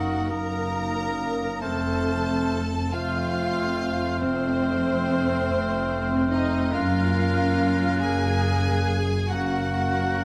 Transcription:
0.00 0.15 F#1 soft
0.00 0.15 F#2 soft
0.00 0.28 A#3 soft
0.00 0.28 D#4 soft
0.00 0.27 F#4 soft
0.00 0.31 F#4 soft
0.00 0.28 A#4 soft
0.00 0.30 F#5 medium
0.00 0.29 D#6 soft
0.29 1.47 F#1 soft
0.29 1.47 F#2 soft
0.29 1.59 A#3 soft
0.29 1.60 A#3 soft
0.29 1.60 D#4 soft
0.29 0.96 D#4 soft
0.29 1.62 A#4 medium
0.29 1.60 A#4 medium
0.29 1.60 A#4 soft
0.29 1.61 A#5 medium
0.29 1.59 D#6 soft
0.96 1.62 C#4 soft
1.61 2.77 F1 medium
1.61 2.77 F2 medium
1.61 2.62 A3 soft
1.61 2.93 A3 soft
1.61 2.90 C4 soft
1.61 2.63 C4 soft
1.61 2.89 A4 medium
1.61 2.90 A4 medium
1.61 2.63 C5 soft
1.61 2.89 A5 medium
1.61 2.63 F6 soft
2.91 4.06 F1 medium
2.91 4.05 F2 medium
2.91 4.17 A3 medium
2.91 4.05 A3 soft
2.91 4.17 C4 medium
2.91 4.05 C4 medium
2.91 4.20 F4 medium
2.91 4.18 F4 medium
2.91 4.17 C5 medium
2.91 4.20 F5 medium
2.91 4.17 F6 medium
4.19 5.33 F1 medium
4.19 5.32 F2 medium
4.19 6.70 A3 medium
4.19 6.31 C4 medium
4.19 6.27 C4 medium
4.19 6.75 C4 medium
4.19 6.70 C4 medium
4.19 6.31 C5 medium
4.19 6.74 C5 medium
4.19 6.70 F6 medium
5.47 6.59 F1 medium
5.47 6.58 F2 medium
6.31 6.73 D#4 medium
6.31 6.72 D#4 medium
6.31 6.72 D#5 medium
6.71 7.85 F#1 medium
6.71 7.85 F#2 medium
6.71 8.98 A#3 medium
6.71 9.28 A#3 medium
6.71 9.02 C#4 medium
6.71 9.28 C#4 medium
6.71 7.97 F4 medium
6.71 8.00 F4 medium
6.71 9.01 A#4 medium
6.71 7.99 F5 medium
6.71 8.98 F#6 medium
7.98 9.13 F#1 medium
7.98 9.14 F#2 medium
7.98 9.26 G#4 medium
7.98 9.29 G#4 medium
7.98 9.26 G#5 medium
9.28 10.24 F#1 medium
9.28 10.24 F#2 medium
9.28 10.24 A#3 medium
9.28 10.24 A#3 soft
9.28 10.24 C#4 medium
9.28 10.24 F#4 medium
9.28 10.24 A#4 medium
9.28 10.24 F#5 medium
9.28 10.24 F#6 medium

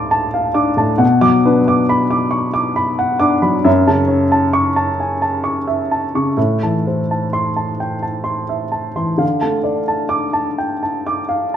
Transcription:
0.00 0.96 D2 medium
0.00 0.77 A2 soft
0.00 0.55 D4 soft
0.00 1.04 A4 soft
0.00 0.34 F5 medium
0.00 0.11 A5 medium
0.00 1.04 C6 soft
0.00 0.54 D6 medium
0.11 0.47 A5 medium
0.34 0.70 F5 medium
0.54 0.92 D4 medium
0.54 0.91 D6 medium
0.77 1.00 A2 soft
0.77 1.01 A5 soft
0.98 3.60 B2 medium
0.98 1.36 F#5 medium
1.21 1.58 F#3 soft
1.21 1.58 D6 medium
1.45 1.81 D4 medium
1.45 1.81 B4 medium
1.68 2.04 D6 medium
1.89 2.25 B5 medium
2.11 2.47 D6 medium
2.31 2.55 C#6 soft
2.54 2.90 D6 medium
2.76 3.12 B5 medium
2.99 3.34 F#5 medium
3.20 3.56 D4 medium
3.20 3.56 D6 medium
3.42 3.65 F#3 soft
3.42 3.65 B5 medium
3.65 6.32 F#2 medium
3.65 4.01 E5 medium
3.87 4.24 C#3 soft
3.87 4.24 A5 medium
4.08 4.45 C#5 medium
4.32 4.68 A5 medium
4.53 4.89 C#6 medium
4.76 5.12 A5 medium
5.00 5.22 G#5 soft
5.22 5.58 A5 medium
5.44 5.80 C#6 soft
5.67 6.04 E5 soft
5.91 6.28 A5 soft
6.15 6.38 C#3 soft
6.15 6.38 C#6 soft
6.37 9.19 A2 medium
6.37 6.75 E5 soft
6.63 7.00 E3 soft
6.63 7.00 A5 soft
6.87 7.24 C5 soft
7.11 7.48 A5 soft
7.33 7.71 C6 medium
7.56 7.94 A5 soft
7.80 8.04 G5 soft
8.02 8.41 A5 soft
8.24 8.64 C6 soft
8.49 8.89 E5 soft
8.72 9.11 A5 soft
8.96 9.20 E3 soft
8.96 9.21 C6 soft
9.18 11.57 D3 medium
9.18 9.57 F5 soft
9.41 9.80 A3 soft
9.41 9.79 A5 soft
9.64 10.02 D5 soft
9.88 10.26 A5 soft
10.09 10.48 D6 medium
10.33 10.72 A5 soft
10.58 10.82 G5 soft
10.83 11.20 A5 soft
11.07 11.44 D6 medium
11.29 11.57 F5 soft

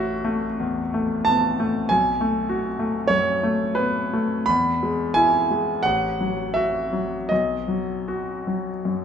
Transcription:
0.00 1.83 A1 medium
0.00 0.13 A3 soft
0.00 0.46 F#4 soft
0.00 1.26 E5 medium
0.24 0.80 A3 soft
0.60 1.14 E2 soft
0.94 1.47 A3 soft
1.25 1.59 B3 soft
1.25 1.88 A5 medium
1.60 1.90 A3 soft
1.89 4.44 B1 medium
1.89 3.08 G#5 medium
2.21 2.67 A3 soft
2.49 2.97 F#4 soft
2.79 3.28 A3 soft
3.07 3.62 F#2 soft
3.07 3.75 C#5 medium
3.43 3.99 A3 soft
3.75 4.12 B3 soft
3.75 4.47 B4 medium
4.13 4.48 A3 soft
4.46 5.82 E2 medium
4.46 5.15 B5 medium
4.83 5.37 G#3 soft
5.14 5.71 E4 soft
5.14 5.84 G#5 medium
5.51 5.85 G#3 soft
5.83 7.26 A1 soft
5.83 6.55 F#5 medium
6.21 6.78 F#3 soft
6.54 7.15 F#4 soft
6.54 7.29 E5 medium
6.93 7.30 F#3 soft
7.29 9.05 B1 soft
7.29 8.85 D#5 medium
7.68 8.31 F#3 soft
8.08 8.70 F#4 soft
8.47 9.05 F#3 soft
8.85 9.05 F#2 soft

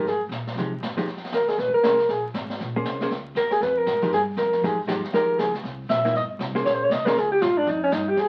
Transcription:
0.04 0.28 G#2 medium
0.04 0.22 G#4 medium
0.04 brush sweep soft
0.04 snare soft
0.29 0.55 A#2 medium
0.29 snare medium
0.29 hi-hat pedal medium
0.47 snare soft
0.55 0.80 C3 medium
0.55 0.71 F3 medium
0.55 0.72 G#3 medium
0.55 brush sweep soft
0.55 snare soft
0.60 0.72 D#4 medium
0.60 0.72 G4 medium
0.81 0.95 G#2 medium
0.81 snare medium
0.81 hi-hat pedal medium
0.97 1.06 F3 medium
0.97 1.07 G#3 medium
0.97 1.07 D#4 medium
0.97 1.07 G4 medium
0.97 muted upright bass stroke soft
0.97 snare soft
1.06 1.31 F2 medium
1.06 brush sweep soft
1.06 snare soft
1.17 snare soft
1.24 snare soft
1.32 1.57 D#2 medium
1.32 1.50 A#4 medium
1.32 snare medium
1.32 hi-hat pedal medium
1.48 1.60 G#4 medium
1.48 snare soft
1.58 1.67 A#1 medium
1.58 1.73 B4 medium
1.58 brush sweep soft
1.58 snare soft
1.67 1.74 G#1 medium
1.74 1.83 F1 medium
1.74 2.11 A#4 loud
1.83 2.08 C2 medium
1.83 1.97 A#3 medium
1.83 1.98 C#4 medium
1.83 1.98 G#4 medium
1.83 1.98 C5 medium
1.83 snare medium
1.83 hi-hat pedal medium
1.98 snare soft
2.08 2.34 A#1 medium
2.08 2.25 G#4 medium
2.08 brush sweep medium
2.08 snare soft
2.34 2.59 G#1 loud
2.34 snare medium
2.34 hi-hat pedal medium
2.50 snare soft
2.60 2.84 A#1 medium
2.60 brush sweep medium
2.60 snare soft
2.76 3.00 A#3 medium
2.76 3.00 C#4 medium
2.76 3.00 G#4 medium
2.76 3.00 C5 medium
2.84 3.10 C2 medium
2.84 snare medium
2.84 hi-hat pedal medium
3.01 3.11 A#3 medium
3.01 3.11 C#4 medium
3.01 3.11 G#4 medium
3.01 3.11 C5 medium
3.01 snare soft
3.10 3.34 C#2 medium
3.10 brush sweep soft
3.10 snare soft
3.35 3.60 D#2 medium
3.35 3.51 A#4 medium
3.35 snare medium
3.35 hi-hat pedal medium
3.51 3.64 G#4 medium
3.51 snare soft
3.61 3.86 F2 medium
3.61 3.79 B4 medium
3.61 brush sweep soft
3.61 snare soft
3.78 4.13 A#4 loud
3.86 4.10 G#2 medium
3.86 snare medium
3.86 hi-hat pedal medium
4.02 4.12 F3 medium
4.02 4.12 G#3 medium
4.02 4.12 D#4 medium
4.02 4.12 G4 medium
4.02 snare soft
4.11 4.36 G2 medium
4.11 4.22 G#4 medium
4.11 brush sweep soft
4.11 snare soft
4.37 4.61 F2 medium
4.37 4.66 A#4 medium
4.37 snare medium
4.37 hi-hat pedal medium
4.53 snare soft
4.62 4.86 G#2 medium
4.62 4.77 F3 medium
4.62 4.77 G#3 medium
4.62 4.77 D#4 medium
4.62 4.77 G4 medium
4.62 4.79 G#4 medium
4.62 brush sweep soft
4.62 snare soft
4.87 4.97 G2 medium
4.87 5.02 F3 medium
4.87 5.02 G#3 medium
4.87 5.02 D#4 medium
4.87 5.02 G4 medium
4.87 snare medium
4.87 hi-hat pedal medium
4.96 5.03 F2 medium
5.03 5.12 D#2 medium
5.03 snare soft
5.13 5.38 D#2 medium
5.13 5.51 F3 medium
5.13 5.51 G#3 medium
5.13 5.51 D#4 medium
5.13 5.52 G4 medium
5.13 5.40 A#4 loud
5.13 brush sweep soft
5.13 snare soft
5.38 5.63 C#2 medium
5.38 5.54 G#4 medium
5.38 snare medium
5.38 hi-hat pedal medium
5.54 snare soft
5.64 5.88 C2 medium
5.64 brush sweep soft
5.64 snare soft
5.89 6.13 A#1 loud
5.89 6.13 E5 medium
5.89 snare medium
5.89 hi-hat pedal medium
6.05 6.14 A#3 medium
6.05 6.14 D#4 medium
6.05 6.15 E4 medium
6.05 snare soft
6.13 6.39 G1 medium
6.13 6.25 D#5 loud
6.13 brush sweep soft
6.13 snare soft
6.39 6.64 C2 loud
6.39 snare medium
6.39 hi-hat pedal medium
6.55 6.89 A#3 medium
6.55 6.89 C#4 medium
6.55 6.89 G#4 medium
6.55 6.89 C5 medium
6.55 snare soft
6.65 6.89 A#1 medium
6.65 6.75 C#5 medium
6.65 brush sweep soft
6.65 snare soft
6.74 6.85 C5 medium
6.84 6.94 C#5 loud
6.89 7.15 C2 medium
6.89 7.08 D#5 loud
6.89 snare medium
6.89 hi-hat pedal medium
7.06 7.15 A#3 medium
7.06 7.16 C#4 medium
7.06 7.16 G#4 medium
7.06 7.20 A#4 loud
7.06 7.16 C5 medium
7.06 snare medium
7.16 7.41 C#2 medium
7.16 7.31 G#4 medium
7.16 brush sweep medium
7.16 snare soft
7.32 7.43 G4 loud
7.41 7.66 G#2 loud
7.41 7.59 F4 medium
7.41 snare medium
7.41 hi-hat pedal medium
7.57 7.70 D4 medium
7.67 7.91 F2 loud
7.67 7.83 D#4 medium
7.67 brush sweep soft
7.67 snare soft
7.84 7.95 C#4 medium
7.92 8.16 G2 medium
7.92 8.10 D#4 medium
7.92 snare medium
7.92 hi-hat pedal medium
8.08 8.21 G4 medium
8.16 8.28 D#2 medium
8.16 8.28 G#4 loud
8.16 brush sweep medium
8.16 snare soft

